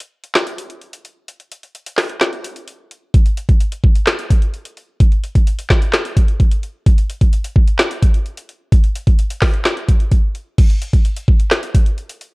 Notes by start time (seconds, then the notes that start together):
0.00 closed hi-hat
0.23 closed hi-hat
0.34 snare, clap, closed hi-hat
0.47 closed hi-hat
0.58 closed hi-hat
0.70 closed hi-hat
0.82 closed hi-hat
0.93 closed hi-hat
1.05 closed hi-hat
1.28 closed hi-hat
1.40 closed hi-hat
1.51 closed hi-hat
1.63 closed hi-hat
1.75 closed hi-hat
1.86 closed hi-hat
1.97 snare, clap, open hi-hat
2.10 closed hi-hat
2.20 snare, clap, closed hi-hat
2.33 closed hi-hat
2.44 closed hi-hat
2.56 closed hi-hat
2.68 closed hi-hat
2.91 closed hi-hat
3.14 kick, closed hi-hat
3.26 closed hi-hat
3.37 closed hi-hat
3.49 kick, closed hi-hat
3.61 closed hi-hat
3.72 closed hi-hat
3.84 kick
3.96 closed hi-hat
4.06 snare, clap, closed hi-hat
4.19 closed hi-hat
4.30 kick, closed hi-hat
4.42 closed hi-hat
4.54 closed hi-hat
4.65 closed hi-hat
4.77 closed hi-hat
5.00 kick, closed hi-hat
5.12 closed hi-hat
5.23 closed hi-hat
5.35 kick, closed hi-hat
5.47 closed hi-hat
5.58 closed hi-hat
5.69 kick, snare, clap
5.82 closed hi-hat
5.93 snare, clap, closed hi-hat
6.05 closed hi-hat
6.16 kick, closed hi-hat
6.28 closed hi-hat
6.40 kick, closed hi-hat
6.51 closed hi-hat
6.63 closed hi-hat
6.86 kick, closed hi-hat
6.98 closed hi-hat
7.09 closed hi-hat
7.21 kick, closed hi-hat
7.33 closed hi-hat
7.44 closed hi-hat
7.56 kick
7.68 closed hi-hat
7.79 snare, clap, closed hi-hat
7.91 closed hi-hat
8.02 kick, closed hi-hat
8.14 closed hi-hat
8.26 closed hi-hat
8.37 closed hi-hat
8.49 closed hi-hat
8.72 kick, closed hi-hat
8.84 closed hi-hat
8.96 closed hi-hat
9.07 kick, closed hi-hat
9.19 closed hi-hat
9.30 closed hi-hat
9.41 kick, snare, clap, open hi-hat
9.54 closed hi-hat
9.64 snare, clap, closed hi-hat
9.77 closed hi-hat
9.89 kick, closed hi-hat
10.00 closed hi-hat
10.12 kick, closed hi-hat
10.35 closed hi-hat
10.58 kick, closed hi-hat, crash
10.70 closed hi-hat
10.82 closed hi-hat
10.93 kick, closed hi-hat
11.05 closed hi-hat
11.16 closed hi-hat
11.28 kick
11.40 closed hi-hat
11.51 snare, clap, closed hi-hat
11.63 closed hi-hat
11.75 kick, closed hi-hat
11.86 closed hi-hat
11.98 closed hi-hat
12.10 closed hi-hat
12.21 closed hi-hat